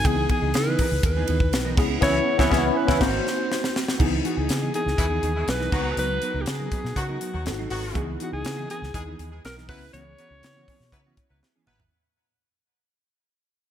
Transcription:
0.04 C#2 E3 B3 D#4 E4 G#4, kick, hi-hat pedal, ride
0.17 muted clean electric guitar stroke
0.29 E3 B3 D#4 G#4, kick, ride
0.42 C#2 E3 B3 D#4 G#4
0.54 C#3 B4, snare, ride
0.67 E3 B3 D#4 G#4
0.79 E3 B3 D#4 A#4, kick, open hi-hat, ride
0.92 C#2, muted clean electric guitar stroke
1.03 D#2 B4, muted clean electric guitar stroke, kick, hi-hat pedal, ride
1.17 E3 B3 D#4 G#4
1.28 D#2 E3 B3 D#4 G#4, ride
1.40 muted clean electric guitar stroke, kick
1.52 B1, muted clean electric guitar stroke, snare, ride
1.65 E3 B3 D#4 A#4
1.76 C#2 B3 C#4 E4 G#4, kick, snare, crash
1.90 muted clean electric guitar stroke
2.01 C#2 C#3 E3 B3 C#4 E4 F#4 C#5, kick, snare, crash
2.38 C#2 C#3 E3 B3 C#4 E4 F#4 C#5, kick, snare
2.50 C#2 C#3 E3 B3 C#4 E4 F#4, kick, snare
2.77 B4
2.87 C#2 C#3 E3 B3 C#4 E4, kick, snare
2.99 G#1 D#3 A#3 C4 D#4 F#4 C5, kick, snare, crash
3.27 snare
3.52 snare
3.64 snare
3.76 snare
3.88 snare
3.98 C#2 E3 B3 D#4 E4 G#4, kick, crash
4.12 muted clean electric guitar stroke
4.24 E3 B3 D#4 F#4 G#4, closed hi-hat
4.37 C#2 E3 B3 D#4 G#4
4.49 C#3, snare, closed hi-hat
4.62 E3 B3 D#4 G#4
4.73 E3 B3 D#4 G#4 A#4, closed hi-hat
4.86 C#2, muted clean electric guitar stroke, snare
4.97 D#2 B2 E3 G#3 E4, muted clean electric guitar stroke, kick, closed hi-hat
5.10 E3 B3 D#4 G#4
5.23 D#2 E3 B3 D#4 G#4, closed hi-hat
5.35 B2 E3 G#3 E4, muted clean electric guitar stroke
5.47 B1 B4, muted clean electric guitar stroke, snare, closed hi-hat
5.60 E3 B3 D#4 A#4, snare
5.71 C#2 D#3 F#3 B3 D#4 F#4 A#5, kick, snare, crash
5.84 muted clean electric guitar stroke
5.97 C#2 F#3 B3 D#4 A#4 B4, closed hi-hat
6.10 muted clean electric guitar stroke
6.22 F#3 B3 D#4 A#4, closed hi-hat
6.34 C#2 F#3 B3 D#4 A#4
6.42 G4
6.46 C#3 G#4, snare, closed hi-hat
6.59 F#3 B3 D#4 A#4
6.71 F#3 B3 D#4 B4, kick, closed hi-hat
6.84 B2, muted clean electric guitar stroke, snare
6.95 C#3 D#3 F#3 B3 F#4, muted clean electric guitar stroke, kick, closed hi-hat
7.08 F#3 B3 D#4 A#4
7.21 F#3 B3 D#4 A#4, closed hi-hat
7.33 D#2 D#3 F#3 B3 F#4, muted clean electric guitar stroke
7.46 G#1 B3 D#4 F#4 A4, muted clean electric guitar stroke, snare, closed hi-hat
7.52 C4
7.58 F#3 C4 D#4 C5
7.70 G#1 D#3 F#3 B3 F#4, muted clean electric guitar stroke, open hi-hat
7.83 muted clean electric guitar stroke
7.94 C#2 E3 B3 D#4 E4 G#4, kick, closed hi-hat
8.08 muted clean electric guitar stroke
8.20 E3 B3 D#4 F#4 G#4, closed hi-hat
8.33 C#2 E3 B3 D#4 G#4
8.44 C#3, muted clean electric guitar stroke, snare, closed hi-hat
8.57 E3 B3 D#4 G#4
8.70 E3 B3 D#4 G#4 A#4, closed hi-hat
8.82 C#2, muted clean electric guitar stroke, snare
8.94 D#2 E3 G#3 D#4 G#4, muted clean electric guitar stroke, kick, closed hi-hat
9.07 E3 B3 D#4 G#4
9.19 D#2 E3 B3 D#4 G#4, closed hi-hat
9.30 E3 G#3 D#4 G#4, muted clean electric guitar stroke
9.44 B1 A#4, muted clean electric guitar stroke, snare, closed hi-hat
9.56 E3 B3 D#4 A#4, snare
9.68 C#2 F#3 B3 C#4 E4 G#4 B4, kick, open hi-hat
9.81 muted clean electric guitar stroke
9.94 C#2 E3 B3 C#4 F#4 C#5, closed hi-hat
10.06 muted clean electric guitar stroke
10.18 E3 B3 C#4 F#4, closed hi-hat
10.30 C#2 E3 B3 C#4 F#4
10.43 C#3, snare, closed hi-hat
10.56 E3 B3 C#4 F#4
10.68 E3 B3 C#4 G#4, kick, open hi-hat
10.80 B2, muted clean electric guitar stroke, snare
10.92 C#3 F#3 B3 E4 B4, muted clean electric guitar stroke, kick, closed hi-hat
11.06 E3 B3 C#4 F#4
11.17 muted clean electric guitar stroke, kick, closed hi-hat
11.29 C#2 F#3 B3 E4 B4, muted clean electric guitar stroke
11.43 muted clean electric guitar stroke, snare
11.55 E3 B3 C#4 G#4
11.66 G#1 F#3 B3 E4 B4, mid tom
11.80 floor tom

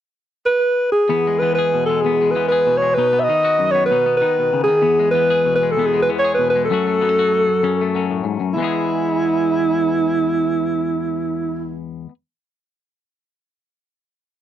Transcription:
0.46 B4
0.92 G#4
1.09 E2 B3
1.27 G#3
1.39 E3 B3 B4
1.55 G#4 B4
1.74 B2
1.86 G#3 A4
2.01 E2 G#4
2.06 B3
2.22 G#3
2.31 B4
2.35 E3 B3
2.48 G#4 B4
2.67 B2
2.77 C#5
2.82 G#3
2.94 B2 B4
2.98 D#4
3.13 B3
3.20 D#5 E5
3.28 D#3 D#4
3.45 F#4
3.59 F#2
3.71 B3 C#5
3.86 B4
3.91 B2 D#4
4.06 B3
4.17 B4
4.21 D#3 D#4
4.39 B2
4.53 C#3
4.64 G#4
4.68 D#3
4.82 E2 B3
4.99 G#3
5.11 E3 B3 B4
5.30 G#4
5.45 B2
5.55 B4
5.63 G#3
5.71 A4
5.77 E2 B3
5.86 G#4
5.94 G#3
6.02 B4
6.09 E3 B3
6.19 C#5
6.24 G#4
6.35 B2 B4
6.50 B4
6.56 G#3
6.65 A4
6.70 F#2 F#3 A3 C#4 F#4
6.87 A3
7.01 F#3 B3
7.09 C#4
7.19 F#4
7.49 muted clean electric guitar stroke
7.63 F#2 C#4
7.81 A3
7.95 F#3 C#4
8.11 A2
8.24 G#2
8.40 F#2
8.54 E2 E4
8.58 E3 G#3 B3
8.64 G#4

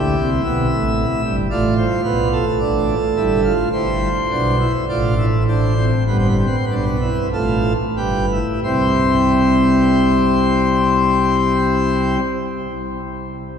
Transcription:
Already playing: D2 D3 E4 G4
0.18 C2 C3
0.44 B1 B2 E5
0.71 A1 A2
1.24 G1 G2
1.50 A1 A2 F4 D5
1.77 C5
2.04 B1 B2 B4
2.32 A4
2.60 A1 A2 D4
3.16 G1 G2 E4
3.44 F4
3.72 G1 G2 E4 C5
4.30 B1 B2 D4
4.60 E4
4.89 A1 A2 F4 D5
5.18 E4
5.48 D4 C5
5.77 C4
6.07 G1 G2 B3 B4
6.18 C5
6.28 B4
6.37 C4 C5
6.47 B4
6.55 C5
6.65 B4
6.70 B1 B2 D4
6.75 C5
6.85 B4
7.01 E4
7.33 A1 A2 F4 A4
7.97 G1 G2 G4 B4
8.32 E4
8.63 C2 C3 G3 C4 E4 C5

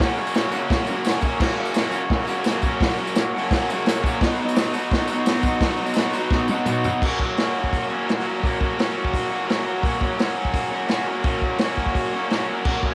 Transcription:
0.00 F#2 C#3 F#3 A#3 C#4 F#4, snare, tambourine
0.08 tambourine
0.16 F#3 A#3 C#4 F#4, tambourine
0.27 tambourine
0.34 F#3 A#3 C#4 F#4, snare, open hi-hat, tambourine
0.43 tambourine
0.51 F#2 C#3 F#3 A#3 C#4 F#4, tambourine
0.60 tambourine
0.68 F#3 A#3, kick, snare, open hi-hat, tambourine
0.73 C#4 F#4
0.87 F#3 A#3 C#4 F#4, tambourine
0.91 F#2 C#3
0.96 tambourine
1.04 F#3 A#3 C#4 F#4, snare, open hi-hat, tambourine
1.13 tambourine
1.21 C#4 F#4, kick, tambourine
1.26 F#3 A#3
1.32 tambourine
1.39 F#2 C#3 F#3 A#3 C#4 F#4, kick, snare, crash
1.48 tambourine
1.57 F#3 A#3 C#4 F#4
1.65 tambourine
1.74 F#3 A#3 C#4, snare, open hi-hat, tambourine
1.79 F#4
1.91 F#2 C#3 F#3 A#3 C#4 F#4, tambourine
2.08 F#3 A#3 C#4, kick, snare, open hi-hat, tambourine
2.12 F#4
2.20 tambourine
2.27 F#2 C#3 F#3 A#3 C#4 F#4, tambourine
2.44 F#3 A#3, snare, open hi-hat, tambourine
2.48 C#4 F#4
2.54 tambourine
2.62 C#4 F#4, kick, tambourine
2.66 F#3 A#3
2.81 F#2 C#3 F#3 A#3 C#4, kick, snare, open hi-hat
2.85 F#4
2.90 tambourine
2.98 F#3 A#3 C#4 F#4
3.07 tambourine
3.15 F#3 A#3 C#4, snare, open hi-hat, tambourine
3.20 F#4
3.34 F#2 C#3 F#3 A#3 C#4 F#4
3.51 F#3 A#3, kick, snare, open hi-hat, tambourine
3.55 C#4 F#4
3.62 tambourine
3.70 C#3 F#3 A#3 C#4 F#4, tambourine
3.74 F#2
3.80 tambourine
3.86 F#3 A#3 C#4, snare, open hi-hat, tambourine
3.90 F#4
4.04 A#3 C#4 F#4, kick, tambourine
4.08 F#3
4.20 B2 F#3 B3 D#4, kick, snare, open hi-hat
4.24 F#4
4.32 tambourine
4.39 B3 D#4 F#4
4.49 tambourine
4.55 F#3 B3 D#4 F#4, snare, open hi-hat, tambourine
4.65 tambourine
4.74 B2 F#3 B3 D#4 F#4, tambourine
4.91 F#3 B3 D#4 F#4, kick, snare, open hi-hat, tambourine
5.00 tambourine
5.08 B3 D#4 F#4, tambourine
5.12 B2 F#3
5.17 tambourine
5.26 F#3 B3 D#4, snare, open hi-hat, tambourine
5.31 F#4
5.36 tambourine
5.43 F#4, kick, tambourine
5.47 B3 D#4
5.53 tambourine
5.61 B2 F#3 B3 D#4, kick, snare, open hi-hat, tambourine
5.65 F#4
5.71 tambourine
5.78 F#4, tambourine
5.83 B3 D#4, tambourine
5.94 F#3, snare, open hi-hat, tambourine
5.98 B3 D#4 F#4
6.04 tambourine
6.13 B3 D#4 F#4, tambourine
6.18 B2 F#3, tambourine
6.30 F#3 B3, kick, snare, tambourine
6.34 D#4 F#4
6.39 tambourine
6.48 B3 D#4 F#4, high tom, tambourine
6.52 B2 F#3
6.59 tambourine
6.66 F#3 B3 D#4, mid tom, tambourine
6.70 F#4
6.75 tambourine
6.84 D#4 F#4, floor tom, tambourine
6.88 B3
7.02 F#3 A#3 C#4, kick, crash
7.07 F#4
7.19 C#4 F#4, kick
7.25 A#3
7.37 F#3 A#3 C#4, snare, open hi-hat
7.41 F#4
7.64 kick
7.73 kick, open hi-hat
7.89 A#3 C#4 F#4
8.06 F#3 A#3 C#4, snare, open hi-hat
8.11 F#4
8.25 A#3 C#4 F#4
8.43 F#3 A#3 C#4 F#4, kick, open hi-hat
8.60 C#4 F#4, kick
8.64 A#3
8.78 F#3 A#3 C#4 F#4, snare, open hi-hat
9.04 kick
9.13 kick, open hi-hat
9.30 A#3 C#4 F#4
9.47 F#3 A#3 C#4 F#4, snare, open hi-hat
9.65 A#3 C#4 F#4
9.82 F#3 A#3 C#4, kick, open hi-hat
9.86 F#4
10.01 A#3 C#4 F#4, kick
10.18 F#3 A#3 C#4 F#4, snare, open hi-hat
10.45 kick
10.54 kick, open hi-hat
10.71 A#3 C#4 F#4
10.88 F#3 A#3 C#4, snare, open hi-hat
10.93 F#4
11.07 A#3 C#4 F#4
11.23 F#3 A#3 C#4 F#4, kick, open hi-hat
11.41 A#3 C#4 F#4, kick
11.58 F#3 A#3 C#4, snare, open hi-hat
11.62 F#4
11.77 kick
11.86 kick
11.95 kick, open hi-hat
12.13 A#3 C#4 F#4
12.30 F#3 A#3 C#4, snare, open hi-hat
12.35 F#4
12.48 A#3 C#4 F#4
12.65 F#3 A#3 C#4 F#4, kick, crash
12.83 A#3 C#4 F#4, kick

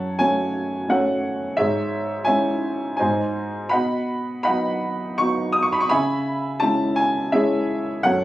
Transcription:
Already playing: F#2 C#5 F#5 A5
0.19 A3 C#4 F#4 C#5 G#5
0.89 A3 C#4 F#4 A4 C#5 F#5
1.57 G#2 G#4 C#5 E5
2.25 G#3 C#4 E4 C#5 E5 G#5
2.97 G#2 C5 D#5 G#5
3.69 B2 D#5 F#5 B5
4.43 D#5 F#5 B5
4.48 F#3 B3 D#4
5.18 F#3 B3 D#4 C#6
5.52 D#6
5.62 C#6
5.72 B5
5.80 C#6
5.89 C#3 E5 G#5 B5
6.60 G#3 C#4 E4 A5
6.96 G#5
7.32 G#3 C#4 E4 G#4 C#5 E5
8.03 F#2 A4 C#5 F#5

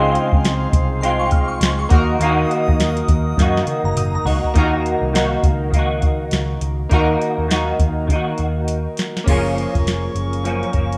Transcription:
Already playing: C#2 C#3 G#3 C4 D#4 F4 G#4 C5 F5 C6
0.15 closed hi-hat
0.33 C#2, kick
0.45 snare, closed hi-hat
0.73 C2, kick, closed hi-hat
1.01 G#3 C4 F4 C6, closed hi-hat
1.19 C#6
1.31 F6, kick, closed hi-hat
1.48 C#6
1.61 C#2 C6, snare, closed hi-hat
1.79 C#6
1.89 D#2 A#3 D#4 F#4 A#4 D#5 F#5 D#6, kick, closed hi-hat
1.94 A#3 A#4
2.20 D#2 D#3 A#3, closed hi-hat
2.24 D#4 F#4
2.51 closed hi-hat
2.68 D#2, kick
2.80 snare, closed hi-hat
2.97 closed hi-hat
3.08 D#2, kick, closed hi-hat
3.37 F#2 D#3 A#3 D#4, kick, snare, closed hi-hat
3.42 F#4
3.57 snare
3.66 muted picked electric bass stroke, closed hi-hat, high tom
3.84 F#1 A#5, high tom
3.95 F#1 D#6, closed hi-hat, mid tom
4.15 A#5, mid tom
4.25 C#2 D#4 F#4, floor tom, open hi-hat
4.29 A#3
4.44 floor tom
4.54 D#2 D#3 A#3 D#4 F4, kick, closed hi-hat
4.58 F#4 A#4
4.63 F#4
4.86 closed hi-hat
5.02 C2
5.13 D#3 A#3 D#4 F#4, snare, closed hi-hat
5.43 C#2, kick, closed hi-hat
5.71 D#3 A#3, kick, closed hi-hat
5.76 D#4 F#4
6.02 kick, closed hi-hat
6.31 C#2, snare, closed hi-hat
6.61 C#2, closed hi-hat
6.89 D#2 D#3 A#3 D#4 F#4, kick, closed hi-hat
6.94 A#4
7.22 closed hi-hat
7.38 D#2
7.48 D#3 A#3 D#4, snare, closed hi-hat
7.53 F#4
7.79 D#2, kick, closed hi-hat
8.07 D#3 A#3, kick, closed hi-hat
8.13 D#4 F#4
8.38 D#2, closed hi-hat
8.68 closed hi-hat
8.97 snare, closed hi-hat
9.17 snare
9.24 F#1 F3 A#3 C#4 A#4 F5 A#5 C#6, kick, closed hi-hat, crash
9.28 A#3 C#4 F4 G#4
9.46 closed hi-hat
9.58 closed hi-hat
9.75 F1, kick, closed hi-hat
9.87 snare, closed hi-hat
10.15 F#1, closed hi-hat
10.33 closed hi-hat
10.43 F#2 F3 A#3 C#4, closed hi-hat
10.63 closed hi-hat
10.73 F#1 F3 A#3 C#4, kick, closed hi-hat
10.93 closed hi-hat

